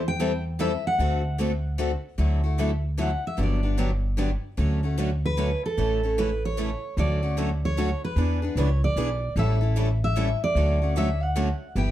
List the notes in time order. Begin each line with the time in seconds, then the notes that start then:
Already playing: E2
0.08 G5
0.20 E3 G3 C4 E4 A4
0.59 E3 G3 C4 E4 A4 E5
0.87 F#5
0.98 D2 D3 A3 C4 F#4 A4
1.38 D3 A3 C4 F#4 A4
1.78 D3 A3 C4 F#4 A4
2.18 D2 D3 F#3 A3 E4 F#4 A4
2.43 A3 E4 F#4
2.58 D3 F#3 A3 E4 F#4 A4
2.97 D3 F#3 A3 E4 F#4 A4 F#5
3.27 E5
3.37 G1 D3 F#3 B3 D4 G4
3.43 D5
3.63 B3 D4 G4
3.78 D3 F#3 B3 D4 G4
4.17 D3 F#3 B3 D4 G4
4.57 D2 D3 F#3 A3 C#4 F#4 A4
4.83 A3 C#4 F#4
4.97 D3 F#3 A3 C#4 F#4 A4
5.26 B4
5.37 D3 F#3 A3 C#4 F#4 A4
5.66 A4
5.77 A1 C#3 E3 A3 C#4 E4 A4
6.03 A3 C#4 A4
6.18 C#3 E3 A3 C#4 E4 A4 B4
6.45 C#5
6.57 C#3 E3 A3 C#4 E4 A4
6.97 D2 D3 F#3 A3 C#4 F#4 A4 D5
7.23 A3 C#4 F#4
7.37 D3 F#3 A3 C#4 F#4 A4
7.65 C#5
7.77 D3 F#3 A3 C#4 F#4 A4
8.04 B4
8.16 E2 E3 B3 D4 G#4 B4
8.42 B3 D4 G#4
8.55 C#2 E3 B3 D4 G#4 B4 C#5
8.84 D5
8.96 B1 E3 B3 D4 G#4 B4
9.36 A1 E3 G3 C#4 E4 A4 E5
9.61 C#4 E4 A4
9.76 E3 G3 C#4 E4 A4
10.04 E5
10.16 E3 G3 C#4 E4 A4
10.44 D5
10.55 D2 D3 F#3 A3 C#4 F#4 A4
10.82 A3 C#4 F#4
10.96 D3 F#3 A3 C#4 F#4 A4 E5
11.23 F#5
11.36 D3 F#3 A3 C#4 F#4 A4
11.75 G1 G3 B3 E4 G4 G5